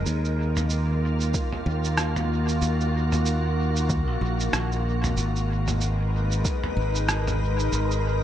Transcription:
Already playing: ambient pad D#4 A#4
0.06 fingered electric bass D#2, ambient pad D#3, cabasa
0.14 ambient pad A#3
0.20 ambient pad F4
0.25 cabasa
0.57 mid tom, cabasa
0.70 cabasa
1.21 cabasa
1.34 ambient pad F#4, kick, cabasa
1.53 mid tom
1.66 fingered electric bass D#2
1.84 cabasa
1.97 cross-stick, cabasa
2.16 mid tom, cabasa
2.48 cabasa
2.62 fingered electric bass D#2, cabasa
2.81 cabasa
3.12 mid tom, cabasa
3.25 cabasa
3.76 cabasa
3.89 kick, cabasa
4.08 fingered electric bass A#1
4.21 fingered electric bass A#1
4.40 cabasa
4.53 fingered electric bass A#1, cross-stick, cabasa
4.72 cabasa
5.04 mid tom, cabasa
5.17 fingered electric bass G#1, ambient pad G#3, cabasa
5.36 ambient pad A#4, cabasa
5.47 ambient pad D#4 B4
5.68 mid tom, cabasa
5.81 cabasa
6.32 cabasa
6.45 kick, cabasa
6.64 mid tom
6.77 fingered electric bass G#1
6.95 cabasa
7.09 cross-stick, cabasa
7.27 mid tom, cabasa
7.59 cabasa
7.72 fingered electric bass G#1, cabasa
7.91 cabasa

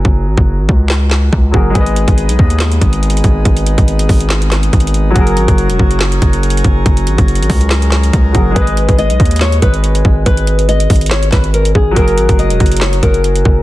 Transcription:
Already playing: grand piano F#3 F#4 G#4 A#4
0.05 808-style bass F#1, kick
0.26 808-style bass G#1
0.38 808-style bass F#1, kick
0.59 808-style bass G#1
0.69 808-style bass C#2, kick
0.90 snare, clap
1.11 snare, clap
1.33 808-style bass C#2, kick
1.51 808-style bass F#1, grand piano F#3 F#4 G#4, kick
1.56 grand piano A#4
1.70 grand piano G#3 G#4
1.75 808-style bass G#1, pipe organ G#3 B3 D#4, grand piano B4, kick, closed hi-hat
1.80 grand piano D#5
1.86 closed hi-hat
1.96 closed hi-hat
2.08 808-style bass G#1, kick, closed hi-hat
2.18 closed hi-hat
2.29 808-style bass B1, closed hi-hat
2.39 808-style bass D#2, kick
2.50 closed hi-hat
2.60 snare, clap, closed hi-hat
2.72 closed hi-hat
2.81 808-style bass G#1, kick, closed hi-hat
2.93 closed hi-hat
3.03 closed hi-hat
3.10 closed hi-hat
3.17 closed hi-hat
3.24 808-style bass G#1, kick, closed hi-hat
3.45 808-style bass G#1, kick, closed hi-hat
3.57 closed hi-hat
3.66 closed hi-hat
3.78 808-style bass G#1, kick, closed hi-hat
3.88 closed hi-hat
3.99 closed hi-hat
4.09 808-style bass G#1, kick, open hi-hat
4.20 closed hi-hat
4.30 snare, clap, closed hi-hat
4.42 closed hi-hat
4.51 snare, clap, closed hi-hat
4.63 closed hi-hat
4.73 808-style bass G#1, kick, closed hi-hat
4.80 closed hi-hat
4.87 closed hi-hat
4.94 closed hi-hat
5.10 grand piano F#3 F#4
5.16 808-style bass F#1, pipe organ F#3 C#4 G#4 A#4, grand piano G#4, kick, closed hi-hat
5.21 grand piano A#4
5.27 closed hi-hat
5.37 808-style bass G#1, closed hi-hat
5.48 808-style bass F#1, kick, closed hi-hat
5.58 closed hi-hat
5.69 808-style bass E1, closed hi-hat
5.79 808-style bass F#1, kick
5.91 closed hi-hat
6.00 snare, clap, closed hi-hat
6.12 closed hi-hat
6.22 808-style bass F#1, kick, closed hi-hat
6.33 closed hi-hat
6.43 closed hi-hat
6.50 closed hi-hat
6.57 closed hi-hat
6.64 808-style bass F#1, kick, closed hi-hat
6.86 808-style bass F#1, kick, closed hi-hat
6.97 closed hi-hat
7.07 808-style bass G#1, closed hi-hat
7.18 808-style bass F#1, kick, closed hi-hat
7.28 closed hi-hat
7.35 closed hi-hat
7.40 808-style bass G#1, closed hi-hat
7.50 808-style bass C#2, kick, open hi-hat
7.61 closed hi-hat
7.71 snare, clap, closed hi-hat
7.82 closed hi-hat
7.92 snare, clap, closed hi-hat
8.03 closed hi-hat
8.13 808-style bass C#2, kick, closed hi-hat
8.32 808-style bass F#1, grand piano F#3 F#4 G#4, kick, closed hi-hat
8.37 grand piano A#4
8.51 grand piano G#3 G#4
8.56 808-style bass G#1, nylon-string guitar B4, grand piano B4, kick, closed hi-hat
8.61 grand piano D#5
8.67 closed hi-hat
8.77 closed hi-hat
8.89 808-style bass G#1, kick, closed hi-hat
8.98 nylon-string guitar D#5, closed hi-hat
9.10 808-style bass B1, closed hi-hat
9.20 808-style bass D#2, kick, closed hi-hat
9.25 closed hi-hat
9.31 closed hi-hat
9.36 closed hi-hat
9.41 nylon-string guitar C#5, snare, clap, closed hi-hat
9.52 closed hi-hat
9.62 808-style bass G#1, nylon-string guitar B4, kick, closed hi-hat
9.74 closed hi-hat
9.84 closed hi-hat
9.95 closed hi-hat
10.05 808-style bass G#1, kick
10.26 808-style bass G#1, nylon-string guitar B4, kick, closed hi-hat
10.37 closed hi-hat
10.47 closed hi-hat
10.59 closed hi-hat
10.69 nylon-string guitar D#5, closed hi-hat
10.80 closed hi-hat
10.90 808-style bass G#1, kick, closed hi-hat, open hi-hat
10.96 closed hi-hat
11.01 closed hi-hat
11.06 closed hi-hat
11.11 nylon-string guitar C#5, snare, clap, closed hi-hat
11.23 closed hi-hat
11.32 808-style bass G#1, nylon-string guitar B4, kick, snare, clap, closed hi-hat
11.44 closed hi-hat
11.54 nylon-string guitar A#4, closed hi-hat
11.65 closed hi-hat
11.75 808-style bass G#1, nylon-string guitar G#4, kick
11.91 grand piano F#3 F#4
11.96 808-style bass F#1, grand piano G#4, nylon-string guitar A#4, kick, closed hi-hat
12.02 grand piano A#4
12.08 closed hi-hat
12.18 808-style bass G#1, closed hi-hat
12.29 808-style bass F#1, kick, closed hi-hat
12.39 nylon-string guitar D#5, closed hi-hat
12.50 808-style bass E1, closed hi-hat
12.60 808-style bass F#1, kick, closed hi-hat
12.66 closed hi-hat
12.72 closed hi-hat
12.77 closed hi-hat
12.81 nylon-string guitar C#5, snare, clap, closed hi-hat
12.93 closed hi-hat
13.03 808-style bass F#1, nylon-string guitar A#4, kick, closed hi-hat
13.14 closed hi-hat
13.24 closed hi-hat
13.36 closed hi-hat
13.45 808-style bass F#1, kick

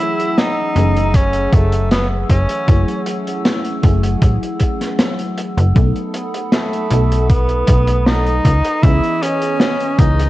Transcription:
Already playing: fm electric piano E3 F#3 A3 C#4 G#4, ambient pad A3 F#5 G#5 E6, tenor saxophone E4
0.20 closed hi-hat
0.38 tenor saxophone D#4, snare, closed hi-hat
0.75 fm bass F#1, fm electric piano E3 F#3 A3 C#4 G#4, closed hi-hat
0.97 closed hi-hat
1.14 tenor saxophone C#4, kick, closed hi-hat
1.33 closed hi-hat
1.53 fm bass F#1, tenor saxophone A3, kick, closed hi-hat
1.72 closed hi-hat
1.91 tenor saxophone B3, snare, closed hi-hat
2.30 fm bass F#1, tenor saxophone C#4, kick, closed hi-hat
2.49 closed hi-hat
2.67 fm bass F#1, fm electric piano F#3 A3 C#4 E4 G#4, kick, closed hi-hat
2.88 closed hi-hat
3.06 closed hi-hat
3.27 closed hi-hat
3.45 snare, closed hi-hat
3.65 closed hi-hat
3.82 fm bass F#1, fm electric piano F#3 A3 C#4 E4 G#4, kick, closed hi-hat
4.03 closed hi-hat
4.22 fm bass A1, kick, closed hi-hat
4.43 closed hi-hat
4.59 kick, closed hi-hat
4.81 snare, closed hi-hat
4.99 snare, closed hi-hat
5.19 closed hi-hat
5.37 closed hi-hat
5.57 fm bass F#1, closed hi-hat
5.74 fm bass B1, fm electric piano F#3 A3 B3 D#4 A4, ambient pad A4 F#5 B5 D#6, kick, closed hi-hat
5.96 closed hi-hat
6.14 closed hi-hat
6.34 closed hi-hat
6.52 tenor saxophone A3, snare, closed hi-hat
6.73 closed hi-hat
6.90 fm bass B1, fm electric piano F#3 A3 B3 D#4 A4, closed hi-hat
7.12 closed hi-hat
7.29 tenor saxophone B3, kick, closed hi-hat
7.49 closed hi-hat
7.67 fm bass B1, kick, closed hi-hat
7.87 closed hi-hat
8.06 tenor saxophone D#4, snare, closed hi-hat
8.27 closed hi-hat
8.45 fm bass C#2, ambient pad B4 C#6, kick, closed hi-hat
8.65 closed hi-hat
8.82 fm bass C#2, fm electric piano E3 B3 C#4 G#4 D#5, tenor saxophone E4, kick, closed hi-hat
9.04 closed hi-hat
9.22 tenor saxophone C#4, closed hi-hat
9.42 closed hi-hat
9.60 snare, closed hi-hat
9.80 closed hi-hat
9.98 fm bass C#2, fm electric piano E3 B3 C#4 G#4 D#5, tenor saxophone D#4, kick, closed hi-hat
10.20 closed hi-hat

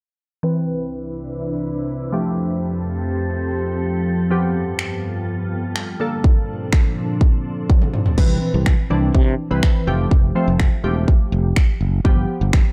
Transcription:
0.43 ambient pad C2 C3 D4 E4 B4, synth keys E3 C4 B4
2.12 ambient pad F2 F3 C4 G4 A4, synth keys F3 A3 G4
4.30 ambient pad G2 G3 B3 F4, synth keys F3 B3 G4
4.79 finger snap
5.76 finger snap
6.00 ambient pad A#2 F3 C4 D4, synth keys D3 A#3 A4
6.24 kick
6.73 finger snap, kick
7.21 kick
7.69 kick, high tom
7.82 mid tom
7.94 mid tom
8.06 floor tom
8.18 fretless electric bass C2, synth keys E3 C4 B4, kick, crash
8.54 fretless electric bass C2
8.66 finger snap, kick
8.90 fretless electric bass C2, synth keys E3 C4 D4
9.14 fretless electric bass C3, kick
9.51 fretless electric bass C2, synth keys E3 C4 B4
9.63 finger snap, kick
9.87 fretless electric bass F1, synth keys F3 A3 G4
10.11 fretless electric bass F1, kick
10.35 synth keys F3 A3 C4
10.48 fretless electric bass F1
10.60 finger snap, kick
10.84 fretless electric bass E1, synth keys F3 A3 G4
11.08 kick
11.32 fretless electric bass F1
11.56 finger snap, kick
11.81 fretless electric bass F#1
12.05 fretless electric bass G1, synth keys F3 B3 G4, kick
12.41 fretless electric bass G1
12.53 finger snap, kick

